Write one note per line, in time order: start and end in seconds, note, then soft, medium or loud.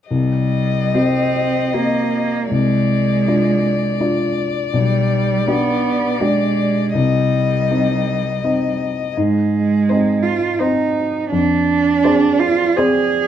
0.10 0.92 C2 soft
0.10 0.97 G3 soft
0.10 2.47 D#5 soft
0.95 1.70 C4 soft
0.95 1.76 C4 soft
0.95 1.70 G4 soft
0.95 1.70 D#5 soft
1.74 2.51 A#3 soft
1.74 2.48 C4 soft
1.74 2.48 G4 soft
1.74 2.48 D#5 soft
2.51 3.25 C2 soft
2.51 4.33 G#3 medium
2.51 6.92 D5 soft
3.28 3.96 D4 soft
3.28 3.96 F4 soft
3.28 3.96 D5 soft
4.00 4.70 D4 soft
4.00 4.70 F4 soft
4.00 4.70 D5 soft
4.74 5.46 B1 soft
4.74 5.49 G3 medium
5.47 6.22 B3 medium
5.47 6.17 D4 soft
5.47 6.17 G4 soft
5.47 6.17 D5 soft
6.21 6.95 G#3 soft
6.21 6.91 D4 soft
6.21 6.91 G4 soft
6.21 6.91 D5 soft
6.94 7.68 C2 soft
6.94 8.80 G3 soft
6.94 9.13 D#5 soft
7.71 8.40 C4 soft
7.71 8.40 D#4 soft
7.71 8.40 D#5 soft
8.44 9.13 C4 soft
8.44 9.13 D#4 soft
8.44 9.13 D#5 soft
9.16 9.87 G#2 soft
9.16 10.24 G#3 medium
9.89 10.56 C4 soft
9.89 10.56 D#4 soft
9.89 10.42 C5 soft
9.89 10.57 D#5 soft
10.22 10.60 F4 medium
10.59 11.28 C4 soft
10.59 11.30 D#4 soft
10.59 11.28 D#4 soft
10.59 11.13 C5 soft
10.59 11.28 D#5 soft
11.31 12.02 F2 soft
11.31 12.41 D4 medium
12.04 12.74 C4 soft
12.04 12.74 G#4 soft
12.04 12.59 C5 soft
12.04 12.75 D5 soft
12.40 12.79 F4 medium
12.77 13.27 C4 soft
12.77 13.27 G#4 medium
12.77 13.27 G#4 soft
12.77 13.27 C5 soft
12.77 13.27 D5 soft